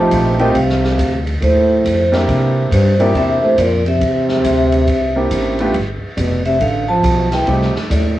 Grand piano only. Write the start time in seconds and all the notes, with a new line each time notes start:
Already playing: A3 C4 D#4 F4 G4
0.40 A3 C4 D#4 F4 G4
2.12 A#3 C4 D4 E4 G4
2.99 A#3 C4 D4 E4 G4
5.16 A#3 C4 D4 E4 G4
5.60 A3 B3 D4 F4 G4
7.47 A3 C4 D#4 F4 G4